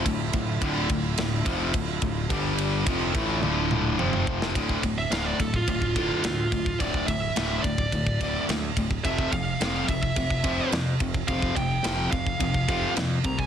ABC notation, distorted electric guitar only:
X:1
M:4/4
L:1/8
Q:1/4=107
K:Dm
V:1 name="Distorted electric guitar" clef=bass
[D,,A,,] [D,,A,,] [D,,A,,D,] [D,,A,,] [D,,A,,] [F,,C,F,] [D,,A,,] [D,,A,,] | [G,,D,G,]2 [F,,C,F,] [A,,E,A,] [D,,A,,D,]2 [F,,C,F,]2 | [D,,A,,D,] [D,,A,,] [D,,A,,D,] [D,,A,,] [D,,A,,] [D,,A,,D,] [D,,A,,] [D,,A,,] | [D,,A,,D,] [D,,A,,] [D,,A,,D,] [D,,A,,] [D,,A,,] [D,,A,,D,] [D,,A,,] [D,,A,,] |
[F,,C,F,] [F,,C,] [F,,C,F,] [F,,C,] [F,,C,] [F,,C,F,] [F,,C,] [F,,C,] | [F,,C,F,] [F,,C,] [F,,C,F,] [F,,C,] [F,,C,] [F,,C,F,] [F,,C,] [F,,C,] |]